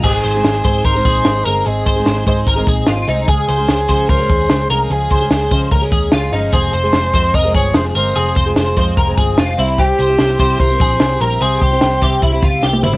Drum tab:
CC |x---------------|----------------|----------------|----------------|
HH |--x-x-x-x-x-x-x-|x-x-x-x-x-x-x-x-|x-x-x-x-x-x-x-x-|x-x-x-x-x-x-x-o-|
SD |----o-------o---|----o-------o---|----o-------o---|----o-------o---|
T1 |----------------|----------------|----------------|----------------|
T2 |----------------|----------------|----------------|----------------|
FT |----------------|----------------|----------------|----------------|
BD |o-----o-o-o-----|--o---o-o-o-----|o-----o-o-o-----|--o---o-o-o-----|

CC |----------------|----------------|----------------|----------------|
HH |x-x-x-x-x-x-x-x-|x-x-x-x-x-x-x-x-|x-x-x-x-x-x-x-x-|x-x-x-x-x-x-----|
SD |----o-------o---|----o-------o---|----o-------o---|----o-------o---|
T1 |----------------|----------------|----------------|-------------o--|
T2 |----------------|----------------|----------------|--------------o-|
FT |----------------|----------------|----------------|---------------o|
BD |o-----o-o-o-----|--o---o-o-o-----|o-----o-o-o-----|--o---o-o-o-----|